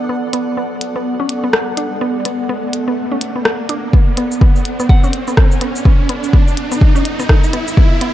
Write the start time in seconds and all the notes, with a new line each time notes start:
Already playing: B3 A4 D5 F#5, riser
0.09 B3
0.33 B3, closed hi-hat
0.57 B3
0.81 closed hi-hat
0.96 B3
1.20 C#4
1.29 closed hi-hat
1.44 B3
1.53 cross-stick
1.77 D4, closed hi-hat
2.01 B3
2.25 B3, closed hi-hat
2.49 B3
2.73 closed hi-hat
2.88 B3
3.12 C#4
3.21 closed hi-hat
3.36 B3
3.45 cross-stick
3.69 D4, closed hi-hat
3.93 B3, kick
4.17 B3, closed hi-hat
4.32 shaker
4.41 B3, kick
4.56 shaker
4.65 closed hi-hat
4.80 B3, shaker
4.89 F#5, kick
5.04 C#4, shaker
5.13 closed hi-hat
5.28 B3, shaker
5.37 kick, cross-stick
5.52 shaker
5.61 B3, closed hi-hat
5.76 shaker
5.85 B3, kick
6.09 B3, closed hi-hat
6.24 shaker
6.33 B3, kick
6.48 shaker
6.57 closed hi-hat
6.72 B3, shaker
6.81 kick
6.96 C#4, shaker
7.05 closed hi-hat
7.20 B3, shaker
7.29 kick, cross-stick
7.44 shaker
7.53 B3, closed hi-hat
7.68 shaker
7.77 B3, kick
8.01 B3, closed hi-hat